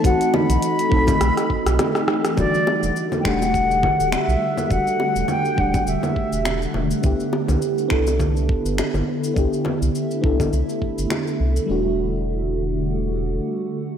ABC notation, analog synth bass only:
X:1
M:4/4
L:1/16
Q:"Swing 16ths" 1/4=103
K:Em
V:1 name="Analog synth bass" clef=bass
B,,, z2 B,,, z2 B,,, z B,,, z2 B,,, z4 | E,,, z2 E,,, z2 E,,,4 z D,,, z B,,, z2 | E,,, z2 E,,, z2 E,,, z E,,, z2 E,,,2 z E,,, z | C,, z2 C,, z2 C,,4 z G,,, z G,,, z2 |
C,, z2 C,, z2 C,, z C,, z2 G,,, z2 C,, z | E,,,12 z4 |]